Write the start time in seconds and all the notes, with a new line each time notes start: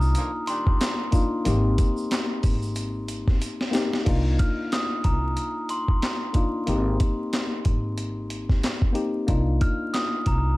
Already playing: C2 A#3 D4 D#4 F4 A#5
0.02 shaker
0.15 D3 F3 A#3 F4, closed hi-hat, shaker
0.47 D#3 G3 D4 G4 C6, closed hi-hat, shaker
0.67 kick
0.81 snare, clap, closed hi-hat, shaker
1.11 A#3 D4 D#4 F4, kick, closed hi-hat, shaker
1.45 G#1 A#3 C4 D#4 G4, closed hi-hat, shaker
1.78 kick, closed hi-hat, shaker
1.97 shaker
2.11 snare, clap, closed hi-hat, shaker
2.43 G#1, kick, open hi-hat, shaker
2.62 shaker
2.76 closed hi-hat, shaker
3.08 closed hi-hat, shaker
3.28 kick, snare
3.42 closed hi-hat, shaker
3.61 snare
3.71 A#3 C4 D#4 G4, closed hi-hat, shaker
3.75 snare
3.93 snare
4.05 C2 A#3 D4 D#4 F4, kick, closed hi-hat, crash
4.39 F6, kick, closed hi-hat
4.72 D#6, snare, clap, closed hi-hat
5.04 C2 A#5, kick, closed hi-hat
5.37 closed hi-hat
5.69 C6, closed hi-hat
5.88 kick
6.02 snare, clap, closed hi-hat
6.33 A#3 D4 D#4 F4, kick, closed hi-hat
6.66 G#1 A#3 C4 D#4 G4, closed hi-hat
7.00 kick, closed hi-hat
7.33 snare, clap, closed hi-hat
7.65 G#1, kick, closed hi-hat
7.98 closed hi-hat
8.30 closed hi-hat
8.49 kick, snare
8.63 snare, clap, closed hi-hat
8.82 kick
8.93 A#3 C4 D#4 G4, closed hi-hat
9.27 C2 A#3 D4 D#4 F4, kick, closed hi-hat
9.61 F6, kick, closed hi-hat
9.93 D#6, snare, clap, closed hi-hat
10.26 C2 A#5, kick, closed hi-hat